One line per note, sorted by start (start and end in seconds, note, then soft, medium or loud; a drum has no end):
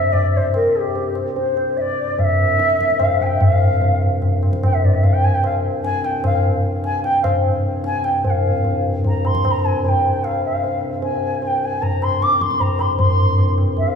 0.00 3.40 C2 medium
0.00 3.39 G2 medium
0.00 0.14 E5 loud
0.12 0.32 D5 medium
0.12 tabla tin medium
0.12 tabla ge medium
0.32 0.38 D5 medium
0.37 0.53 C5 medium
0.54 0.77 A#4 medium
0.54 tabla na medium
0.76 0.81 G#4 medium
0.80 1.16 G4 medium
0.96 tabla tin medium
1.15 tabla na medium
1.36 1.78 C5 medium
1.36 tabla tin medium
1.57 tabla na medium
1.77 2.20 D5 medium
1.77 1.82 E5 medium
1.77 tabla tin medium
2.19 2.25 F5 medium
2.19 tabla tin medium
2.19 tabla ge medium
2.24 3.02 E5 medium
2.59 tabla te medium
2.70 tabla te medium
2.80 tabla ke medium
2.90 tabla te medium
3.00 3.24 F5 medium
3.00 tabla na medium
3.00 tabla ge medium
3.20 3.27 G#5 medium
3.20 tabla ge soft
3.26 3.43 G5 medium
3.41 8.23 C2 medium
3.41 8.23 G2 medium
3.41 4.02 F5 medium
3.41 tabla tin loud
3.41 tabla ge medium
3.81 tabla tin medium
3.81 tabla ge medium
4.22 tabla tin medium
4.22 tabla ge medium
4.43 tabla na medium
4.53 tabla ke medium
4.63 4.75 G5 medium
4.63 tabla na medium
4.63 tabla ge medium
4.73 4.86 E5 medium
4.84 4.95 D5 medium
4.84 tabla ge soft
4.94 5.05 E5 medium
5.03 5.15 F5 medium
5.03 tabla tin medium
5.03 tabla ge medium
5.13 5.26 G5 medium
5.24 5.36 G#5 medium
5.34 5.44 G5 medium
5.44 5.54 F5 medium
5.44 tabla na medium
5.84 6.06 G#5 loud
5.84 tabla te medium
6.04 6.25 G5 medium
6.04 tabla te medium
6.24 6.44 F5 medium
6.24 tabla na medium
6.24 tabla ge medium
6.84 7.03 G#5 medium
6.84 tabla te medium
7.04 7.22 G5 medium
7.04 tabla te medium
7.22 7.42 F5 medium
7.22 tabla na medium
7.22 tabla ge medium
7.84 8.06 G#5 loud
7.84 tabla te medium
8.04 8.24 G5 medium
8.04 tabla te medium
8.24 12.98 C2 medium
8.24 12.98 G2 medium
8.24 8.31 G5 medium
8.24 tabla tin medium
8.24 tabla ge medium
8.30 8.81 F5 medium
8.64 tabla tin medium
8.64 tabla ge medium
9.04 9.28 A#5 medium
9.04 tabla tin medium
9.04 tabla ge medium
9.25 9.46 C6 medium
9.25 tabla na medium
9.35 tabla ke medium
9.45 9.52 C6 medium
9.45 tabla na medium
9.45 tabla ge medium
9.51 9.66 A#5 loud
9.65 9.83 G#5 medium
9.84 9.89 G#5 medium
9.84 tabla tin medium
9.84 tabla ge medium
9.88 10.25 G5 medium
10.24 10.44 F5 medium
10.24 tabla na medium
10.45 10.81 F5 medium
10.64 tabla tin medium
11.02 11.43 G#5 medium
11.02 tabla tin medium
11.42 11.48 G#5 medium
11.42 tabla tin medium
11.47 11.66 G5 medium
11.64 11.84 G#5 medium
11.82 12.05 A#5 medium
11.82 tabla tin medium
11.82 tabla ge medium
12.02 12.24 C6 medium
12.02 tabla na medium
12.22 12.37 D6 medium
12.22 tabla te medium
12.32 tabla te medium
12.37 12.43 D6 medium
12.37 tabla ke medium
12.42 12.62 C6 medium
12.51 tabla te medium
12.60 12.82 A#5 medium
12.60 tabla tin medium
12.60 tabla ge medium
12.79 12.97 C6 medium
12.79 tabla na medium
12.98 13.95 C2 medium
12.98 13.95 G2 medium
12.98 13.53 C6 medium
12.98 tabla tin loud
12.98 tabla ge medium
13.38 tabla tin medium
13.38 tabla ge medium
13.58 tabla na medium
13.77 13.89 E5 medium
13.77 tabla tin medium
13.77 tabla ge medium
13.87 13.95 F5 medium